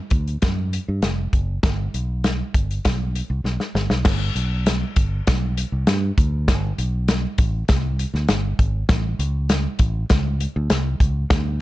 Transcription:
0.10 D2, kick, closed hi-hat
0.27 closed hi-hat
0.42 F#2, kick, snare, closed hi-hat
0.73 closed hi-hat
0.88 G2
1.02 F1, snare, closed hi-hat
1.33 F#1, kick, closed hi-hat
1.63 G1, kick, snare, closed hi-hat
1.94 B1, closed hi-hat
2.24 snare, closed hi-hat
2.54 G1, kick, closed hi-hat
2.71 closed hi-hat
2.85 B1, kick, snare, closed hi-hat
3.15 closed hi-hat
3.30 C2
3.44 B1, snare
3.60 snare
3.75 G1, snare
3.90 B1, snare
4.05 G1, kick, snare, crash
4.35 B1, closed hi-hat
4.66 snare, closed hi-hat
4.96 G1, kick, closed hi-hat
5.27 B1, kick, snare, closed hi-hat
5.57 closed hi-hat
5.72 C2
5.87 G2, snare, closed hi-hat
6.18 D2, kick, closed hi-hat
6.48 G1, kick, snare, closed hi-hat
6.78 B1, closed hi-hat
7.08 snare, closed hi-hat
7.38 A1, kick, closed hi-hat
7.68 C2, kick, snare, closed hi-hat
7.99 closed hi-hat
8.14 D2, snare
8.28 G1, snare, closed hi-hat
8.59 G#1, kick, closed hi-hat
8.89 A1, kick, snare, closed hi-hat
9.19 C#2, closed hi-hat
9.49 snare, closed hi-hat
9.79 A1, kick, closed hi-hat
10.10 C#2, kick, snare, closed hi-hat
10.40 closed hi-hat
10.56 D2
10.70 C2, snare, closed hi-hat
11.00 C#2, kick, closed hi-hat
11.30 D2, kick, snare, closed hi-hat

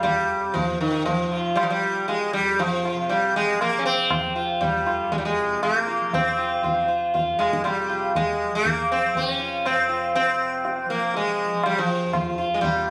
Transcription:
Already playing: F2 C3 F3
0.03 G3, tabla tin, tabla ge
0.47 C3
0.54 F3, tabla tin, tabla ge
0.81 D#3
1.06 F3, tabla tin, tabla ge
1.32 F4
1.56 G3, tabla na
1.63 F3
1.70 F3 G3
2.08 G#3, tabla tin
2.33 F2 G3
2.59 F3, tabla tin
2.85 F4, tabla na
2.93 C3
3.09 G3, tabla tin
3.36 G#3
3.53 F3
3.61 A#3, tabla na
3.79 C#4
3.86 C4
4.11 tabla na, tabla ge
4.15 F3
4.36 F4
4.61 G3, tabla tin, tabla ge
4.78 F2
4.86 F4, tabla na
5.12 G#3, tabla tin, tabla ge
5.18 G3
5.25 G#3
5.39 C3
5.63 A#3, tabla na
5.87 F4
6.01 F3
6.13 C4, tabla tin, tabla ge
6.38 F4
6.61 F3 F4, tabla tin, tabla ge
6.88 F4
7.14 F4, tabla tin, tabla ge
7.23 F2
7.39 G#3, tabla na
7.53 tabla ke
7.64 G3, tabla na
7.83 C3
7.89 F4
8.15 G#3, tabla tin, tabla ge
8.44 F3
8.55 A#3
8.65 tabla tin, tabla ge
8.92 C4
9.05 F3
9.15 C#4, tabla tin, tabla ge
9.39 F4
9.65 F2 C4, tabla na
9.89 F4
10.15 C4, tabla tin
10.24 C3
10.65 tabla tin
10.85 F3
10.90 A#3
11.14 G#3, tabla tin
11.45 F3
11.63 G3, tabla na
11.78 F3
12.04 F2
12.13 F4, tabla na, tabla ge
12.38 F4
12.54 G#3
12.61 C3 G3 F4, tabla tin, tabla ge

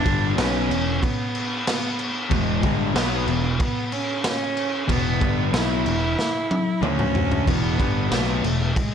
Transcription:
Already playing: D4
0.04 G1 G2 D3 G3, kick, crash
0.37 B1 B2 F#3 B3 C#4, snare, crash
0.69 E1 E2 B2, crash
1.01 B3, kick, crash
1.35 crash
1.67 B3, snare, crash
1.99 crash
2.30 E1 E2 B2 E3 G#3, kick, crash
2.62 G1 G2 D3 G3, kick, crash
2.94 B1 B2 F#3 B3, snare, crash
3.27 E1 E2 B2, crash
3.60 B3, kick, crash
3.92 C#4, crash
4.24 C#4, snare, crash
4.57 crash
4.88 E1 E2 B2 E3 B3, kick, crash
5.20 G1 G2 D3 G3, kick, crash
5.52 B1 B2 F#3 B3 E4, snare, crash
5.85 E1 E2 B2, crash
6.19 snare
6.51 high tom
6.81 D2 D3 A3 C#4 D4, mid tom
6.99 mid tom
7.15 floor tom
7.32 floor tom
7.46 E1 E2 B2 E3 B3, kick, crash
7.78 G1 G2 D3 G3, kick, crash
8.10 B1 B2 F#3 A3 B3, snare, crash
8.43 E1 E2 B2, crash
8.76 G#3, kick, crash

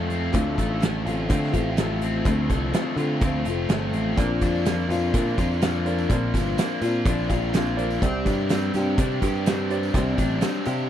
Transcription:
Already playing: F2 F3 A3 C4 F4 A4
0.10 C4, closed hi-hat
0.33 D2 D3 F3 A3 C4 F4, kick, closed hi-hat
0.58 A1 A3, kick, closed hi-hat
0.80 F3 A3 C4 F4, snare, closed hi-hat
1.05 A1 A3 C4 F4, closed hi-hat
1.29 D3 F3 A3 C4 F4, kick, closed hi-hat
1.43 snare
1.52 A1 A3 C4 F4, kick, closed hi-hat
1.77 F3 A3 C4 F4, snare, closed hi-hat
2.02 C4, closed hi-hat
2.25 D2 D3 F3 A3 C4 F4, kick, closed hi-hat
2.50 C2 A3, kick, closed hi-hat
2.73 F3 A3 C4 F4, snare, closed hi-hat
2.96 D3 A3 C4 F4, closed hi-hat
3.21 D2 F3 A3 C4 F4, kick, closed hi-hat
3.45 F1 C4 F4, closed hi-hat
3.50 A3
3.69 G1 F3 A3 C4, snare, closed hi-hat
3.74 F4
3.93 A1 C4, closed hi-hat
4.17 A#1 A#2 F3 A#3 C4 D4 A#4 C5 D5, kick, closed hi-hat, tambourine
4.21 F4
4.41 F2 D4, kick, closed hi-hat, tambourine
4.55 tambourine
4.66 F3 A#3 C4 D4, snare, closed hi-hat, tambourine
4.70 F4
4.89 F2 D4 F4, closed hi-hat, tambourine
4.94 C4
5.14 A#2 F3 C4 F4, kick, closed hi-hat
5.18 D4
5.27 tambourine
5.38 F2 C4 D4 F4, kick, closed hi-hat, tambourine
5.52 tambourine
5.62 F3 A#3 C4 D4 F4, snare, closed hi-hat, tambourine
5.85 D4 A#4 C5 D5, closed hi-hat
5.98 tambourine
6.09 A#1 A#2 F3 A#3 C4 D4 F4 A#4 C5 D5, kick, closed hi-hat
6.33 G1 D4, kick, closed hi-hat, tambourine
6.46 tambourine
6.58 F3 A#3 C4 D4 F4, snare, closed hi-hat, tambourine
6.70 tambourine
6.82 A#2 D4 F4, closed hi-hat, tambourine
6.86 C4
7.06 A#1 F3 C4 D4 F4, kick, closed hi-hat
7.18 tambourine
7.30 A#1 C4 D4 F4, kick, closed hi-hat, tambourine
7.42 tambourine
7.53 F3 A#3 C4 D4 F4, snare, closed hi-hat, tambourine
7.66 tambourine
7.77 D4 A#4 C5 D5, closed hi-hat
7.91 tambourine
8.02 C2 C3 G3 C4 D4 G4 C5 D5, kick, closed hi-hat
8.25 G2 D4, kick, closed hi-hat, tambourine
8.49 G3 C4 D4 G4, snare, closed hi-hat, tambourine
8.63 tambourine
8.74 G2 D4 G4, closed hi-hat, tambourine
8.79 C4
8.98 C3 G3 C4 D4 G4, kick, closed hi-hat
9.12 tambourine
9.22 G2 D4 G4, kick, closed hi-hat, tambourine
9.26 C4
9.35 tambourine
9.46 G3 C4 D4, snare, closed hi-hat, tambourine
9.50 G4
9.70 D4 G4 C5 D5, closed hi-hat
9.83 tambourine
9.94 C2 C3 G3 C4 D4 G4 C5 D5, kick, closed hi-hat
10.06 tambourine
10.18 A1 D4, kick, closed hi-hat, tambourine
10.31 tambourine
10.41 G3 C4 D4 G4, snare, closed hi-hat, tambourine
10.55 tambourine
10.65 C3 C4 D4 G4 F5, closed hi-hat, tambourine
10.78 tambourine

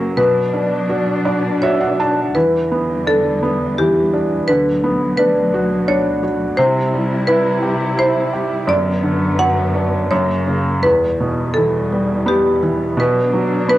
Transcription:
Already playing: F#2 C#3 F#3 A#3 C#4 A#4
0.14 B2 F#3 D4 B4
0.54 D4
0.89 F#4
1.25 D4 D5
1.62 F#4 C#5 E5
1.81 F#5
2.00 D4 A5
2.34 E2 D3 E3 G3 B4
2.72 B3
3.07 D4 A4
3.43 B3
3.78 E3 G4
4.13 D4
4.48 D2 B2 D3 F#3 B4
4.84 B3
5.17 D4 B4
5.54 F#4
5.88 D4 C#5
6.23 F#4
6.57 C3 G3 E4 C5
6.94 G3
7.27 E4 B4
7.63 G4
7.97 E4 C5
8.33 G4
8.67 F#2 D3 F#3 B3 D5
9.03 D3
9.38 F#3 F#5
9.75 D4
10.10 F#2 C#3 A#3 C#5
10.48 C#3
10.83 E2 B2 G3 B4
11.20 B2
11.54 E3 A4
11.92 G3
12.26 B3 G4
12.63 E3
12.97 B2 F#3 D4 B4
13.33 F#3
13.68 B3 B4

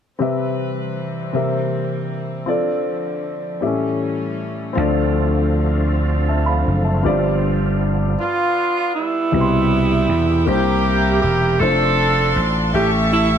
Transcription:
0.19 C3 E3 G3 C4 G4 B4 E5
1.33 C3 A#3 C4 G4 A#4 E5
2.46 D3 F3 A3 C4 F4 A4 D5
3.61 A2 E3 G3 C4 C#4 G4 A4 E5
3.67 C#4
4.73 D3 F3 A3 C4 F4
4.77 D2 A4 D5
6.28 E5 A5
6.46 F5 B5
6.67 F#1
6.84 E5 A5
7.03 G1 G2 D3 F3 G3 B3 F4 G4 D5
7.09 C4
8.18 B3 D4 F4
8.95 G3 B3 E4
9.32 C2 B2 C3 E4 G4 B4 E5 G5
9.40 C6
10.09 E2
10.45 C2 C3 A#3 D4 E4 G4 C5 E5 A#5
10.53 E4
11.21 E1 G4
11.60 F1 A3 C4 D4 F4 A4 C5 D5 F5 A5 C6
12.36 A1
12.73 A1 A2 A3 C#4 G4 A4 E5 G5 C#6
13.13 E4

